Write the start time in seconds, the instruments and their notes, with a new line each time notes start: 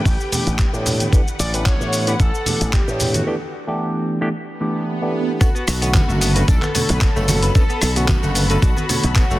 Already playing: string section D3 B4 G5
0.05 slap bass A1, analog synth lead G4, kick, open hi-hat, shaker
0.20 shaker
0.32 tine electric piano E3 A3 B3 D4 G4, open hi-hat, low conga, shaker
0.47 slap bass A1, closed hi-hat, shaker
0.59 kick, clap, closed hi-hat, shaker
0.73 slap bass A2, tine electric piano E3 A3 B3 D4 G4, shaker
0.86 open hi-hat, low conga, shaker
1.00 closed hi-hat, high conga, shaker
1.12 tine electric piano E3 A3 B3 D4 G4, string section F#5, kick, closed hi-hat, shaker
1.28 shaker
1.39 slap bass A1, analog synth lead D5, open hi-hat, shaker
1.54 tine electric piano E3 A3 B3 D4 G4, analog synth lead B4, closed hi-hat, shaker
1.66 analog synth lead C#5, kick, clap, closed hi-hat, shaker
1.81 slap bass A2, shaker
1.93 open hi-hat, shaker
2.07 tine electric piano E3 A3 B3 D4 G4, analog synth lead B4, closed hi-hat, shaker
2.20 slap bass A1, analog synth lead A4, kick, closed hi-hat, shaker
2.35 shaker
2.46 tine electric piano E3 A3 B3 D4 G4, open hi-hat, low conga, shaker
2.61 slap bass A1, closed hi-hat, shaker
2.73 analog synth lead G4, kick, clap, closed hi-hat, shaker
2.87 slap bass A2, tine electric piano E3 A3 B3 D4 G4, shaker
3.00 open hi-hat, low conga, shaker
3.14 analog synth lead F#4, closed hi-hat, high conga, shaker
3.26 tine electric piano E3 A3 B3 D4 G4
3.67 tine electric piano E3 A3 B3 D4 G4
4.21 tine electric piano E3 A3 B3 D4 G4
4.34 swell
4.60 tine electric piano E3 A3 B3 D4 G4
5.02 tine electric piano E3 A3 B3 D4 G4
5.41 tine electric piano D3 A3 B3 C#4 F#4, clean electric guitar B3, analog synth lead F#4, string section A4 A5 B5, kick, closed hi-hat, tambourine, shaker
5.55 clean electric guitar B3, shaker
5.67 slap bass B1, clean electric guitar B3, cross-stick, open hi-hat, tambourine, shaker
5.82 tine electric piano D3 A3 B3 C#4 F#4, clean electric guitar B3, closed hi-hat, tambourine, shaker
5.94 clean electric guitar B3, kick, clap, closed hi-hat, tambourine, high conga, shaker
6.09 slap bass F#1, clean electric guitar A3, tambourine, shaker
6.21 clean electric guitar B3, open hi-hat, tambourine, shaker
6.35 tine electric piano D3 A3 B3 C#4 F#4, clean electric guitar B4, closed hi-hat, tambourine, shaker
6.48 slap bass B1, clean electric guitar D4, analog synth lead A4, kick, closed hi-hat, tambourine, shaker
6.62 clean electric guitar B3, clap, high conga, shaker
6.74 tine electric piano D3 A3 B3 F#4 C#5, clean electric guitar B3, open hi-hat, tambourine, low conga, shaker
6.89 slap bass B1, clean electric guitar B2, analog synth lead B4, closed hi-hat, tambourine, shaker
7.01 clean electric guitar B3, analog synth lead A4, kick, clap, closed hi-hat, tambourine, shaker
7.16 slap bass F#1, tine electric piano D3 A3 B3 F#4 C#5, clean electric guitar A3, tambourine, shaker
7.28 clean electric guitar F#4, open hi-hat, tambourine, high conga, low conga, shaker
7.43 clean electric guitar B4, closed hi-hat, tambourine, shaker
7.55 tine electric piano D3 A3 B3 C#4 F#4, clean electric guitar B3, analog synth lead A4, kick, closed hi-hat, tambourine, shaker
7.70 clean electric guitar B3, shaker
7.82 slap bass B1, clean electric guitar B3, cross-stick, open hi-hat, tambourine, shaker
7.96 tine electric piano D3 A3 B3 C#4 F#4, clean electric guitar B3, analog synth lead F#4, closed hi-hat, tambourine, shaker
8.08 clean electric guitar B3, analog synth lead F#4, kick, clap, closed hi-hat, tambourine, high conga, shaker
8.23 slap bass F#1, clean electric guitar A3, tambourine, shaker
8.35 clean electric guitar B3, open hi-hat, tambourine, shaker
8.50 tine electric piano D3 A3 B3 C#4 F#4, analog synth lead A4, clean electric guitar B4, closed hi-hat, tambourine, shaker
8.62 slap bass B1, clean electric guitar D4, analog synth lead F#4, kick, closed hi-hat, tambourine, shaker
8.77 clean electric guitar B3, high conga, shaker
8.89 tine electric piano D3 A3 B3 F#4 C#5, clean electric guitar B3, open hi-hat, tambourine, low conga, shaker
9.03 slap bass B1, clean electric guitar B2, closed hi-hat, tambourine, shaker
9.15 clean electric guitar B3, analog synth lead F#4, kick, clap, closed hi-hat, tambourine, shaker
9.30 slap bass F#1, tine electric piano D3 A3 B3 F#4 C#5, clean electric guitar A3, tambourine, shaker